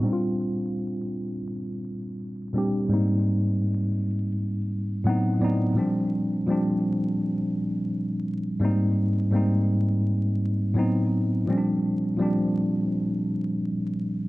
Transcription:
X:1
M:4/4
L:1/8
Q:"Swing 16ths" 1/4=84
K:Bbmix
V:1 name="Tine electric piano"
[B,,G,CDEF]4 z3 [B,,G,CDG] | [A,,G,B,CE]4 z2 [=A,,^F,_C=CE^f] [A,,F,_C=CEd] | [B,,F,G,CD]2 [B,,F,G,CD]4 z2 | [A,,G,B,CE]2 [A,,G,B,CE]4 [=A,,^F,_C=CE]2 |
[B,,F,G,C_D=D]2 [B,,F,G,CD]4 z2 |]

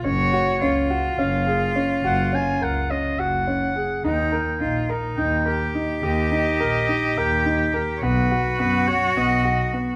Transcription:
X:1
M:7/8
L:1/16
Q:1/4=105
K:Ebm
V:1 name="Oboe"
d6 z2 f4 z2 | g2 a2 g2 e2 g6 | =g6 z2 g4 z2 | e8 =g4- g/2 z d/2 |
c4 c2 d2 e4 z2 |]
V:2 name="Cello"
G4 F8- F2- | F12 z2 | E4 F2 E4 =G4- | =G12- G2 |
G12- G2 |]
V:3 name="Grand piano"
D2 G2 D2 G2 D2 A2 D2 | G2 D2 B2 D2 G2 D2 A2 | E2 B2 E2 B2 E2 B2 E2 | =G2 E2 B2 E2 B2 E2 B2 |
C2 G2 C2 G2 C2 G2 C2 |]
V:4 name="Double bass" clef=bass
G,,,4 D,,4 G,,,6 | G,,,4 D,,4 G,,,6 | E,,4 B,,,4 E,,6 | E,,4 B,,,4 E,,6 |
C,,4 G,,4 C,,6 |]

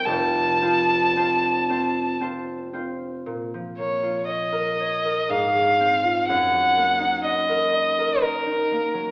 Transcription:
X:1
M:3/4
L:1/16
Q:1/4=60
K:Bbm
V:1 name="Violin"
=a8 z4 | z2 d2 e4 f4 | g4 e4 B4 |]
V:2 name="Harp"
[F,,,F,,C]2 [CFc]2 [CFc]2 [CFc]2 [CFc]2 [CFc]2 | B,, F, B, F d B d B A,, A, C F | G,, G, B, E e B e B e E B, G, |]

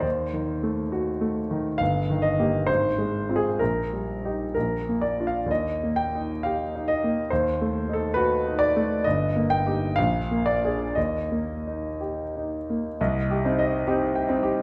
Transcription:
X:1
M:2/4
L:1/16
Q:1/4=67
K:Eb
V:1 name="Grand piano"
c4 z4 | f2 e2 c3 A | B4 B2 d f | e2 g2 f2 e2 |
c3 =A _c2 d2 | e2 g2 f2 d2 | e4 z4 | (3e2 G2 e2 (3G2 g2 G2 |]
V:2 name="Grand piano"
(3E,,2 E,2 =A,2 (3_G2 A,2 E,2 | (3G,,,2 E,2 [B,G]2 (3A,,,2 A,2 [CF]2 | (3B,,,2 G,2 [EG]2 (3B,,,2 B,2 [DF]2 | (3E,,2 B,2 E2 (3G2 E2 B,2 |
(3E,,2 =A,2 E2 (3_G2 E2 A,2 | (3G,,,2 B,2 [EG]2 (3B,,,2 B,2 [DA]2 | (3E,,2 B,2 E2 (3G2 E2 B,2 | C,,2 [CE]2 [CE]2 [CE]2 |]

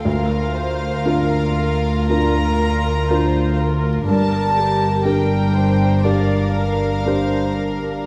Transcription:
X:1
M:4/4
L:1/8
Q:1/4=60
K:Bblyd
V:1 name="Violin section"
f4 b3 z | a2 g2 f4 |]
V:2 name="Viola section"
B c B B B2 c B | B G B c d B c B |]
V:3 name="Violin section"
[FB]8 | [DB]8 |]
V:4 name="Felt piano"
D,,2 [DFB]2 [DFB]2 [DFB]2 | G,,2 [DGB]2 [DGB]2 [DGB]2 |]
V:5 name="Cello section" clef=bass
D,,8 | G,,8 |]
V:6 name="Double bass section" clef=bass
D,,8 | G,,,8 |]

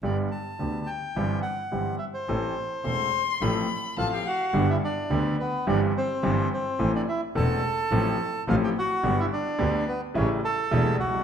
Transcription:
X:1
M:4/4
L:1/16
Q:1/4=107
K:G
V:1 name="Violin"
z16 | z4 c'4 b4 a =f3 | z16 | z16 |
z16 |]
V:2 name="Bandoneon"
d2 a4 g4 f4 e c- | c6- c z4 z [=F=f] [Gg] [^F^f]2- | [Ff] [Ee] [Dd]4 [B,B]2 [Dd]2 [Cc]4 [Cc]2- | [Cc] [Dd] [Ee]2 [Aa]8 [=F=f] [Gg] [^F^f]2- |
[Ff] [Ee] [Dd]4 [B,B]2 [^C^c]2 [Aa]4 [Ff]2 |]
V:3 name="Grand piano" clef=bass
[G,,,G,,D,G,B,G]2 z2 [D,,D,G,B,G]2 z2 [G,,,G,,E,G,CG]2 z2 [G,,,G,,E,G,CG]2 z2 | [A,,,A,,E,A,CA]2 z2 [E,,,E,,E,A,CA]2 z2 [A,,,A,,=F,A,CA]2 z2 [A,,,A,,F,A,CA]2 z2 | [G,,,G,,D,G,B,G]2 z2 [D,,D,G,B,G]2 z2 [G,,,G,,E,G,CG]2 z2 [G,,,G,,E,G,CG]2 z2 | [A,,,A,,E,A,CA]2 z2 [E,,,E,,E,A,CA]2 z2 [A,,,A,,=F,A,CA]2 z2 [A,,,A,,F,A,CA]2 z2 |
[G,,,G,,D,G,B,G]2 z2 [D,,D,G,B,G]2 z2 [A,,,A,,^C,G,A,E]2 z2 [E,,,E,,C,G,A,E]2 z/2 B,,,/2 =C,,/2 ^C,,/2 |]
V:4 name="Double bass" clef=bass
G,,,2 z2 D,,2 z2 G,,,2 z2 G,,,2 z2 | A,,,2 z2 E,,,2 z2 A,,,2 z2 A,,,2 z2 | G,,,2 z2 D,,2 z2 G,,,2 z2 G,,,2 z2 | A,,,2 z2 E,,,2 z2 A,,,2 z2 A,,,2 z2 |
G,,,2 z2 D,,2 z2 A,,,2 z2 E,,,2 C,,2 |]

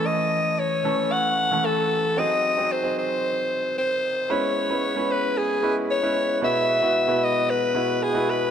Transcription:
X:1
M:4/4
L:1/16
Q:1/4=113
K:C#m
V:1 name="Alto saxophone"
d4 c4 f4 A4 | d4 ^B2 B6 B4 | c6 B2 G4 c4 | e6 d2 B4 G2 B2 |]
V:2 name="Grand piano"
[E,A,CA]6 [E,A,CA]4- [E,A,CA] [E,A,CA]4- [E,A,CA] | [F,^B,DG]3 [F,B,DG]2 [F,B,DG]8 z3 | [G,B,CEB]3 [G,B,CEB]2 [G,B,CEB]4- [G,B,CEB] [G,B,CEB]3 [G,B,CEB]3 | [B,,G,B,EFB]3 [B,,G,B,EFB]2 [B,,G,B,EFB]4- [B,,G,B,EFB] [B,,G,B,EFB]3 [B,,G,B,EFB]3 |]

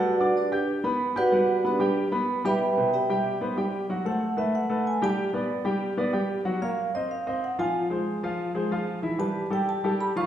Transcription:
X:1
M:4/4
L:1/8
Q:1/4=187
K:G
V:1 name="Vibraphone"
[FBdf]2 [DGBd]2 z3 [FBdf]- | [FBdf]2 [DGBd]2 z3 [Begb]- | [K:C] [Begb]2 [Gdeg]2 z4 | z ^f2 e f2 _a =a |
z8 | z f2 _e f2 ^f _a | z8 | z a2 g a2 b _d' |]
V:2 name="Grand piano"
[G,Af] [Ddd']2 [Ggg']2 [B,Bb]2 [Ggg'] | [G,Bf]2 [B,Bb] [G,Gg]2 [B,Bb]2 [G,Gg] | [K:C] z [B,,Bc]2 [G,Gg]2 [B,Bc] [G,Gg]2 | [^F,^F^f] [A,Ac]2 [A,AB]2 [A,AB]2 [G,Gg]- |
[G,Gg] [B,Bd]2 [G,Gg]2 [B,Bd] [G,Gg]2 | [_G,_G_g] [_B,_B_d]2 [Cc_e]2 [Cce]2 [F,Ff]- | [F,Ff] [_A,_Ac]2 [F,Ff]2 [A,Ac] [F,Ff]2 | [E,Ee] [G,GB]2 [G,GA]2 [G,GA]2 [F,Ff] |]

